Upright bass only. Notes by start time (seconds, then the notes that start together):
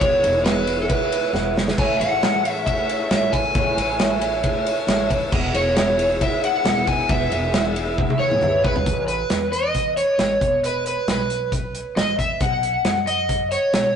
0.01 E1
0.23 E1
1.33 E1
1.78 A1
2.00 A1
3.11 A1
3.55 A1
3.77 A1
4.87 A1
5.33 E1
5.54 E1
6.65 E1
7.10 E1
7.31 E1
8.19 D#2
8.42 C#2
8.65 B1
8.87 A1
9.30 E2
10.18 A1
10.41 E1
11.08 B1
11.96 A1
12.41 B1
12.84 F#2
13.73 B1